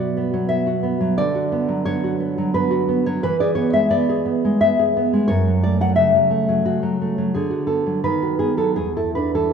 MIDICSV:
0, 0, Header, 1, 2, 480
1, 0, Start_track
1, 0, Tempo, 684151
1, 840, Time_signature, 3, 2, 24, 8
1, 4189, Tempo, 696056
1, 5629, Tempo, 750000
1, 6571, End_track
2, 0, Start_track
2, 0, Title_t, "Nylon-string guitar"
2, 0, Program_c, 0, 24
2, 0, Note_on_c, 0, 47, 70
2, 0, Note_on_c, 0, 54, 55
2, 0, Note_on_c, 0, 59, 55
2, 0, Note_on_c, 0, 66, 55
2, 0, Note_on_c, 0, 74, 90
2, 111, Note_off_c, 0, 59, 0
2, 119, Note_on_c, 0, 59, 54
2, 226, Note_off_c, 0, 54, 0
2, 235, Note_on_c, 0, 54, 57
2, 329, Note_off_c, 0, 74, 0
2, 342, Note_on_c, 0, 76, 96
2, 344, Note_off_c, 0, 59, 0
2, 353, Note_on_c, 0, 59, 55
2, 459, Note_off_c, 0, 66, 0
2, 467, Note_on_c, 0, 66, 58
2, 574, Note_off_c, 0, 59, 0
2, 582, Note_on_c, 0, 59, 55
2, 697, Note_off_c, 0, 54, 0
2, 705, Note_on_c, 0, 54, 64
2, 801, Note_off_c, 0, 47, 0
2, 812, Note_off_c, 0, 76, 0
2, 826, Note_on_c, 0, 74, 105
2, 829, Note_on_c, 0, 50, 74
2, 831, Note_off_c, 0, 59, 0
2, 832, Note_off_c, 0, 54, 0
2, 834, Note_off_c, 0, 66, 0
2, 946, Note_on_c, 0, 66, 55
2, 1066, Note_on_c, 0, 59, 57
2, 1182, Note_on_c, 0, 54, 56
2, 1289, Note_off_c, 0, 74, 0
2, 1300, Note_off_c, 0, 59, 0
2, 1301, Note_on_c, 0, 73, 100
2, 1308, Note_on_c, 0, 59, 59
2, 1422, Note_off_c, 0, 66, 0
2, 1430, Note_on_c, 0, 66, 58
2, 1535, Note_off_c, 0, 59, 0
2, 1543, Note_on_c, 0, 59, 57
2, 1661, Note_off_c, 0, 54, 0
2, 1669, Note_on_c, 0, 54, 59
2, 1768, Note_off_c, 0, 73, 0
2, 1782, Note_off_c, 0, 59, 0
2, 1784, Note_on_c, 0, 71, 89
2, 1791, Note_on_c, 0, 59, 59
2, 1890, Note_off_c, 0, 66, 0
2, 1899, Note_on_c, 0, 66, 67
2, 2016, Note_off_c, 0, 59, 0
2, 2025, Note_on_c, 0, 59, 58
2, 2132, Note_off_c, 0, 71, 0
2, 2146, Note_off_c, 0, 54, 0
2, 2149, Note_on_c, 0, 73, 93
2, 2154, Note_on_c, 0, 54, 60
2, 2238, Note_off_c, 0, 50, 0
2, 2263, Note_off_c, 0, 66, 0
2, 2265, Note_off_c, 0, 59, 0
2, 2268, Note_on_c, 0, 71, 105
2, 2269, Note_off_c, 0, 73, 0
2, 2272, Note_off_c, 0, 54, 0
2, 2274, Note_on_c, 0, 52, 70
2, 2387, Note_on_c, 0, 74, 82
2, 2388, Note_off_c, 0, 71, 0
2, 2392, Note_on_c, 0, 68, 65
2, 2488, Note_off_c, 0, 74, 0
2, 2491, Note_on_c, 0, 73, 81
2, 2497, Note_on_c, 0, 59, 54
2, 2617, Note_off_c, 0, 73, 0
2, 2617, Note_on_c, 0, 56, 54
2, 2620, Note_on_c, 0, 76, 93
2, 2731, Note_off_c, 0, 59, 0
2, 2736, Note_off_c, 0, 76, 0
2, 2739, Note_on_c, 0, 59, 63
2, 2739, Note_on_c, 0, 74, 96
2, 2863, Note_off_c, 0, 68, 0
2, 2871, Note_on_c, 0, 68, 62
2, 2977, Note_off_c, 0, 59, 0
2, 2985, Note_on_c, 0, 59, 54
2, 3111, Note_off_c, 0, 56, 0
2, 3120, Note_on_c, 0, 56, 61
2, 3210, Note_off_c, 0, 74, 0
2, 3225, Note_off_c, 0, 59, 0
2, 3233, Note_on_c, 0, 59, 58
2, 3233, Note_on_c, 0, 76, 92
2, 3354, Note_off_c, 0, 68, 0
2, 3362, Note_on_c, 0, 68, 62
2, 3476, Note_off_c, 0, 59, 0
2, 3484, Note_on_c, 0, 59, 62
2, 3592, Note_off_c, 0, 56, 0
2, 3600, Note_on_c, 0, 56, 59
2, 3686, Note_off_c, 0, 52, 0
2, 3691, Note_off_c, 0, 76, 0
2, 3702, Note_on_c, 0, 73, 98
2, 3712, Note_on_c, 0, 42, 79
2, 3716, Note_off_c, 0, 56, 0
2, 3716, Note_off_c, 0, 68, 0
2, 3717, Note_off_c, 0, 59, 0
2, 3841, Note_on_c, 0, 54, 52
2, 3934, Note_off_c, 0, 73, 0
2, 3953, Note_on_c, 0, 74, 85
2, 3964, Note_on_c, 0, 57, 45
2, 4065, Note_off_c, 0, 54, 0
2, 4070, Note_off_c, 0, 74, 0
2, 4073, Note_on_c, 0, 54, 51
2, 4078, Note_on_c, 0, 78, 87
2, 4176, Note_off_c, 0, 78, 0
2, 4179, Note_on_c, 0, 76, 91
2, 4180, Note_off_c, 0, 42, 0
2, 4183, Note_on_c, 0, 49, 51
2, 4300, Note_off_c, 0, 54, 0
2, 4308, Note_on_c, 0, 54, 50
2, 4409, Note_off_c, 0, 57, 0
2, 4418, Note_on_c, 0, 57, 50
2, 4537, Note_off_c, 0, 54, 0
2, 4546, Note_on_c, 0, 54, 60
2, 4647, Note_off_c, 0, 76, 0
2, 4651, Note_off_c, 0, 49, 0
2, 4659, Note_on_c, 0, 49, 54
2, 4660, Note_on_c, 0, 66, 74
2, 4771, Note_off_c, 0, 54, 0
2, 4779, Note_on_c, 0, 54, 57
2, 4900, Note_off_c, 0, 57, 0
2, 4908, Note_on_c, 0, 57, 50
2, 5015, Note_off_c, 0, 54, 0
2, 5023, Note_on_c, 0, 54, 60
2, 5124, Note_off_c, 0, 66, 0
2, 5136, Note_on_c, 0, 68, 78
2, 5140, Note_off_c, 0, 57, 0
2, 5143, Note_off_c, 0, 49, 0
2, 5143, Note_on_c, 0, 50, 63
2, 5145, Note_off_c, 0, 54, 0
2, 5245, Note_on_c, 0, 66, 48
2, 5360, Note_on_c, 0, 69, 65
2, 5362, Note_off_c, 0, 68, 0
2, 5365, Note_on_c, 0, 59, 42
2, 5494, Note_on_c, 0, 54, 48
2, 5605, Note_off_c, 0, 69, 0
2, 5611, Note_off_c, 0, 50, 0
2, 5611, Note_off_c, 0, 54, 0
2, 5614, Note_on_c, 0, 51, 70
2, 5615, Note_on_c, 0, 71, 80
2, 5617, Note_off_c, 0, 59, 0
2, 5617, Note_off_c, 0, 66, 0
2, 5735, Note_on_c, 0, 66, 55
2, 5838, Note_off_c, 0, 71, 0
2, 5841, Note_on_c, 0, 68, 76
2, 5846, Note_on_c, 0, 59, 53
2, 5958, Note_on_c, 0, 54, 50
2, 5959, Note_off_c, 0, 68, 0
2, 5961, Note_on_c, 0, 69, 70
2, 6073, Note_off_c, 0, 51, 0
2, 6075, Note_off_c, 0, 69, 0
2, 6078, Note_on_c, 0, 68, 76
2, 6085, Note_off_c, 0, 54, 0
2, 6088, Note_off_c, 0, 59, 0
2, 6088, Note_on_c, 0, 40, 55
2, 6090, Note_off_c, 0, 66, 0
2, 6207, Note_off_c, 0, 68, 0
2, 6209, Note_on_c, 0, 64, 46
2, 6210, Note_on_c, 0, 69, 66
2, 6325, Note_off_c, 0, 69, 0
2, 6328, Note_on_c, 0, 71, 72
2, 6339, Note_on_c, 0, 62, 49
2, 6452, Note_off_c, 0, 71, 0
2, 6453, Note_on_c, 0, 52, 50
2, 6455, Note_on_c, 0, 69, 70
2, 6571, Note_off_c, 0, 40, 0
2, 6571, Note_off_c, 0, 52, 0
2, 6571, Note_off_c, 0, 62, 0
2, 6571, Note_off_c, 0, 64, 0
2, 6571, Note_off_c, 0, 69, 0
2, 6571, End_track
0, 0, End_of_file